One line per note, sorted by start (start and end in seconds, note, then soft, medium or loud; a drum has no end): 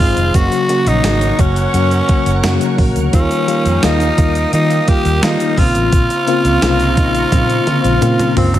0.00 0.13 G#1 medium
0.00 0.36 D#3 medium
0.00 0.36 G#3 medium
0.00 0.36 C4 medium
0.00 0.36 F4 medium
0.00 0.37 F4 loud
0.00 0.32 G#4 medium
0.00 0.37 G#4 loud
0.00 0.32 C5 medium
0.00 0.32 D#5 medium
0.00 0.30 C6 medium
0.00 kick medium
0.17 0.30 F1 medium
0.17 closed hi-hat medium
0.17 shaker medium
0.34 0.47 F#1 loud
0.34 0.56 C#3 loud
0.34 0.56 F#3 loud
0.34 0.56 A#3 medium
0.34 0.56 F#4 loud
0.34 0.89 F#4 loud
0.34 5.54 A#4 medium
0.34 3.11 C#5 medium
0.34 3.11 F#5 medium
0.34 3.11 C#6 medium
0.34 kick loud
0.34 closed hi-hat medium
0.34 shaker medium
0.52 closed hi-hat soft
0.52 shaker medium
0.69 0.91 C#3 loud
0.69 0.91 F#3 medium
0.69 0.91 A#3 medium
0.69 0.91 F#4 loud
0.69 closed hi-hat medium
0.69 shaker soft
0.87 1.00 A#1 loud
0.87 1.42 D#4 loud
0.87 closed hi-hat medium
0.87 shaker soft
1.04 1.30 G#1 medium
1.04 1.26 C#3 medium
1.04 1.26 F#3 medium
1.04 1.26 A#3 medium
1.04 1.26 F#4 medium
1.04 snare loud
1.04 closed hi-hat loud
1.04 tambourine medium
1.04 shaker medium
1.21 closed hi-hat soft
1.21 shaker medium
1.39 1.65 F#1 medium
1.39 1.61 C#3 medium
1.39 1.61 F#3 medium
1.39 1.61 A#3 medium
1.39 2.79 C#4 loud
1.39 1.61 F#4 medium
1.39 kick loud
1.39 closed hi-hat medium
1.39 shaker medium
1.56 closed hi-hat medium
1.56 shaker medium
1.73 2.00 F#2 loud
1.73 1.95 C#3 medium
1.73 1.95 F#3 medium
1.73 1.96 A#3 medium
1.73 1.96 F#4 medium
1.73 closed hi-hat medium
1.73 shaker medium
1.91 closed hi-hat soft
1.91 shaker soft
2.08 2.30 C#3 medium
2.08 2.30 F#3 medium
2.08 2.31 A#3 medium
2.08 2.31 F#4 medium
2.08 kick medium
2.08 closed hi-hat medium
2.26 2.39 F#1 medium
2.26 closed hi-hat medium
2.26 shaker soft
2.43 2.57 F#2 loud
2.43 2.65 C#3 loud
2.43 2.65 F#3 loud
2.43 2.65 A#3 loud
2.43 2.66 F#4 loud
2.43 snare loud
2.43 closed hi-hat medium
2.43 tambourine medium
2.43 shaker medium
2.61 closed hi-hat medium
2.61 shaker medium
2.78 2.92 A#1 medium
2.78 3.00 C#3 medium
2.78 3.00 F#3 medium
2.78 3.00 A#3 medium
2.78 3.00 F#4 loud
2.78 kick loud
2.78 open hi-hat medium
2.96 3.09 D2 medium
2.96 closed hi-hat medium
2.96 shaker medium
3.13 3.26 D#2 loud
3.13 3.35 D#3 loud
3.13 3.35 G3 medium
3.13 3.35 A#3 medium
3.13 3.86 C#4 loud
3.13 3.35 F4 loud
3.13 5.55 F5 medium
3.13 5.55 G5 medium
3.13 5.55 D#6 medium
3.13 kick loud
3.13 closed hi-hat medium
3.13 shaker medium
3.31 closed hi-hat medium
3.31 shaker medium
3.48 3.70 D#3 medium
3.48 3.70 G3 medium
3.48 3.70 A#3 medium
3.48 3.70 F4 loud
3.48 closed hi-hat medium
3.48 shaker soft
3.66 3.79 F2 medium
3.66 closed hi-hat medium
3.66 shaker soft
3.83 4.09 D#2 medium
3.83 4.05 D#3 medium
3.83 4.05 G3 medium
3.83 4.05 A#3 medium
3.83 4.53 D#4 loud
3.83 4.05 F4 medium
3.83 snare loud
3.83 closed hi-hat loud
3.83 tambourine medium
3.83 shaker medium
4.00 closed hi-hat soft
4.00 shaker medium
4.18 4.44 D#2 loud
4.18 4.39 D#3 medium
4.18 4.40 G3 medium
4.18 4.40 A#3 medium
4.18 4.40 F4 medium
4.18 kick loud
4.18 closed hi-hat medium
4.18 shaker medium
4.35 closed hi-hat medium
4.35 shaker soft
4.52 4.74 D#3 medium
4.52 4.79 D#3 loud
4.52 4.75 G3 medium
4.52 4.75 A#3 medium
4.52 4.90 D#4 loud
4.52 4.75 F4 medium
4.52 closed hi-hat medium
4.52 shaker medium
4.70 closed hi-hat soft
4.70 shaker soft
4.87 5.09 D#3 medium
4.87 5.09 G3 medium
4.87 5.10 A#3 medium
4.87 5.10 F4 medium
4.87 5.25 G4 loud
4.87 kick medium
4.87 closed hi-hat medium
5.05 5.18 D#2 medium
5.05 closed hi-hat medium
5.05 shaker soft
5.22 5.44 D#3 loud
5.22 5.36 D#3 loud
5.22 5.44 G3 medium
5.22 5.45 A#3 medium
5.22 5.60 D#4 loud
5.22 5.45 F4 loud
5.22 snare loud
5.22 closed hi-hat medium
5.22 tambourine medium
5.22 shaker medium
5.40 closed hi-hat medium
5.40 shaker medium
5.57 5.71 A#1 loud
5.57 6.13 C#3 medium
5.57 6.13 A#3 medium
5.57 8.59 C4 medium
5.57 6.14 C4 medium
5.57 8.37 F4 loud
5.57 6.14 F4 medium
5.57 8.59 F5 medium
5.57 8.59 A#5 medium
5.57 8.59 C#6 medium
5.57 kick medium
5.57 open hi-hat medium
5.75 5.88 A1 medium
5.75 closed hi-hat medium
5.75 shaker medium
5.92 6.06 A#1 loud
5.92 kick loud
5.92 closed hi-hat medium
5.92 shaker medium
6.10 closed hi-hat soft
6.10 shaker medium
6.27 6.49 C#3 medium
6.27 6.49 A#3 medium
6.27 6.49 C4 medium
6.27 6.50 F4 loud
6.27 closed hi-hat medium
6.27 shaker soft
6.45 6.58 C#2 medium
6.45 closed hi-hat medium
6.45 shaker soft
6.62 6.97 C2 medium
6.62 6.84 C#3 medium
6.62 6.84 A#3 medium
6.62 6.84 C4 medium
6.62 6.84 F4 loud
6.62 snare loud
6.62 closed hi-hat loud
6.62 tambourine medium
6.62 shaker medium
6.80 closed hi-hat soft
6.80 shaker soft
6.97 7.23 A#1 medium
6.97 7.19 C#3 medium
6.97 7.19 A#3 medium
6.97 7.19 C4 medium
6.97 7.19 D#4 medium
6.97 kick loud
6.97 closed hi-hat medium
6.97 shaker medium
7.15 closed hi-hat medium
7.15 shaker soft
7.32 7.58 A#2 loud
7.32 7.54 C#3 medium
7.32 7.54 A#3 medium
7.32 7.54 C4 medium
7.32 7.54 F4 medium
7.32 kick medium
7.32 closed hi-hat medium
7.32 high tom medium
7.32 shaker medium
7.50 closed hi-hat medium
7.50 shaker soft
7.66 7.88 C#3 medium
7.66 7.89 A#3 medium
7.66 7.89 C4 medium
7.66 7.89 F4 loud
7.66 closed hi-hat medium
7.66 mid tom medium
7.84 7.97 A#1 medium
7.84 closed hi-hat medium
7.84 shaker soft
8.01 8.15 A#2 medium
8.01 8.23 C#3 loud
8.01 8.23 A#3 loud
8.01 8.24 C4 loud
8.01 8.24 F4 loud
8.01 closed hi-hat medium
8.01 mid tom medium
8.01 shaker medium
8.19 closed hi-hat medium
8.19 mid tom medium
8.19 shaker medium
8.36 8.50 C#2 medium
8.36 8.58 C#3 medium
8.36 8.58 A#3 medium
8.36 8.59 C4 medium
8.36 8.59 F4 loud
8.36 floor tom loud
8.36 open hi-hat medium
8.54 8.59 G1 medium
8.54 closed hi-hat medium
8.54 floor tom loud
8.54 shaker medium